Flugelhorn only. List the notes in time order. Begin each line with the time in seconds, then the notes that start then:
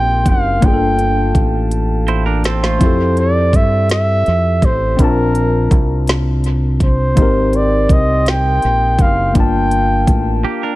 Already playing: G5
0.29 F5
0.65 G5
2.47 C5
3.20 D5
3.56 E5
3.92 E5
4.65 C5
5.01 A#4
6.84 C5
7.56 D5
7.92 D#5
8.29 G5
9.02 F5
9.37 G5